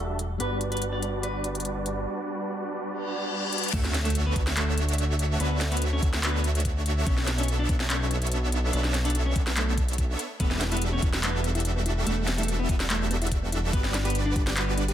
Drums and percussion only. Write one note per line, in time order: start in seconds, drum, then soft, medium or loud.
0.19 closed hi-hat medium
0.40 closed hi-hat medium
0.61 closed hi-hat medium
0.72 closed hi-hat soft
0.77 closed hi-hat medium
0.82 closed hi-hat medium
1.03 closed hi-hat medium
1.23 closed hi-hat medium
1.44 closed hi-hat medium
1.55 closed hi-hat soft
1.60 closed hi-hat medium
1.65 closed hi-hat medium
1.86 closed hi-hat medium
3.53 closed hi-hat medium
3.58 closed hi-hat medium
3.64 closed hi-hat medium
3.69 closed hi-hat medium
3.73 kick loud
3.73 closed hi-hat medium
3.73 crash loud
3.84 snare medium
3.94 snare medium
3.94 closed hi-hat medium
4.05 closed hi-hat soft
4.10 closed hi-hat medium
4.15 closed hi-hat medium
4.36 kick loud
4.36 closed hi-hat medium
4.47 snare medium
4.57 clap loud
4.57 closed hi-hat medium
4.78 closed hi-hat medium
4.89 closed hi-hat medium
4.93 closed hi-hat medium
4.98 closed hi-hat medium
5.19 closed hi-hat medium
5.40 closed hi-hat medium
5.61 snare medium
5.61 closed hi-hat medium
5.72 closed hi-hat soft
5.77 closed hi-hat medium
5.82 closed hi-hat medium
6.03 kick loud
6.03 closed hi-hat medium
6.14 snare medium
6.23 clap loud
6.23 closed hi-hat medium
6.44 closed hi-hat medium
6.55 closed hi-hat medium
6.60 closed hi-hat medium
6.65 kick medium
6.65 closed hi-hat medium
6.86 closed hi-hat medium
7.07 kick loud
7.07 closed hi-hat medium
7.18 snare medium
7.27 snare medium
7.27 closed hi-hat medium
7.38 closed hi-hat soft
7.43 closed hi-hat medium
7.48 closed hi-hat medium
7.69 kick loud
7.69 closed hi-hat medium
7.80 snare medium
7.90 clap loud
7.90 closed hi-hat medium
8.11 closed hi-hat medium
8.22 closed hi-hat medium
8.27 closed hi-hat medium
8.32 closed hi-hat medium
8.52 closed hi-hat medium
8.73 closed hi-hat medium
8.84 snare medium
8.94 snare medium
8.94 closed hi-hat medium
9.05 closed hi-hat soft
9.10 closed hi-hat medium
9.15 closed hi-hat medium
9.36 kick loud
9.36 closed hi-hat medium
9.47 snare medium
9.57 clap loud
9.57 closed hi-hat medium
9.77 kick medium
9.77 closed hi-hat medium
9.88 closed hi-hat medium
9.93 closed hi-hat medium
9.98 kick medium
9.98 closed hi-hat medium
10.19 closed hi-hat medium
10.40 kick loud
10.40 closed hi-hat medium
10.51 snare medium
10.61 snare medium
10.61 closed hi-hat medium
10.72 closed hi-hat soft
10.77 closed hi-hat medium
10.82 closed hi-hat medium
11.02 kick loud
11.02 closed hi-hat medium
11.13 snare medium
11.23 clap loud
11.23 closed hi-hat medium
11.44 closed hi-hat medium
11.55 closed hi-hat soft
11.60 closed hi-hat medium
11.65 closed hi-hat medium
11.86 closed hi-hat medium
12.07 closed hi-hat medium
12.27 snare medium
12.27 closed hi-hat medium
12.38 closed hi-hat soft
12.43 closed hi-hat medium
12.48 closed hi-hat medium
12.69 kick loud
12.69 closed hi-hat medium
12.80 snare medium
12.90 clap loud
12.90 closed hi-hat medium
13.11 closed hi-hat medium
13.22 closed hi-hat soft
13.27 closed hi-hat medium
13.32 kick medium
13.32 closed hi-hat medium
13.52 closed hi-hat medium
13.73 kick loud
13.73 closed hi-hat medium
13.84 snare medium
13.94 snare medium
13.94 closed hi-hat medium
14.05 closed hi-hat soft
14.10 closed hi-hat medium
14.15 closed hi-hat medium
14.36 kick loud
14.36 closed hi-hat medium
14.47 snare medium
14.57 clap loud
14.57 closed hi-hat medium
14.78 closed hi-hat medium
14.88 closed hi-hat soft